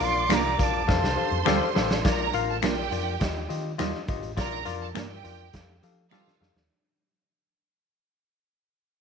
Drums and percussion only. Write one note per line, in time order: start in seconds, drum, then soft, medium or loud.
0.00 closed hi-hat medium
0.30 finger snap loud
0.30 snare loud
0.30 closed hi-hat medium
0.59 kick medium
0.59 closed hi-hat medium
0.89 kick loud
0.89 snare medium
1.04 snare medium
1.46 finger snap medium
1.46 snare medium
1.76 snare loud
1.91 snare medium
2.05 kick loud
2.05 snare loud
2.05 closed hi-hat medium
2.33 closed hi-hat medium
2.62 finger snap loud
2.62 snare loud
2.62 closed hi-hat medium
2.92 closed hi-hat medium
3.21 kick loud
3.21 snare loud
3.21 closed hi-hat medium
3.50 closed hi-hat medium
3.79 finger snap medium
3.79 snare loud
3.79 closed hi-hat medium
3.94 snare soft
4.08 kick loud
4.08 closed hi-hat medium
4.23 closed hi-hat medium
4.37 kick loud
4.37 snare loud
4.37 closed hi-hat medium
4.66 closed hi-hat medium
4.95 finger snap loud
4.95 snare loud
4.95 closed hi-hat medium
5.25 closed hi-hat medium
5.53 kick medium
5.53 snare loud
5.53 closed hi-hat medium
5.83 closed hi-hat medium
6.11 finger snap medium
6.11 snare medium
6.27 snare medium
6.42 snare medium
6.57 snare medium